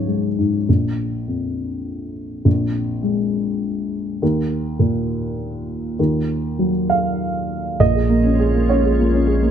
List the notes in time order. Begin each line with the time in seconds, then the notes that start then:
Already playing: C#2 G#2 F#3 G#3 C#5
0.07 G#3
0.39 G#2
0.69 A#1
1.27 F2
2.45 A#1
3.03 G#3
4.22 D#2
4.79 A#2
5.99 D#2
6.59 F#3
6.90 F5
7.79 A#1 A#2 G#3 F4 C#5 D#5
7.95 G#4
8.09 A#3
8.24 C#4
8.39 G#4
8.55 A#3
8.69 C#4 C#5
8.85 G#4
8.99 A#3
9.14 C#4
9.27 G#4
9.42 A#3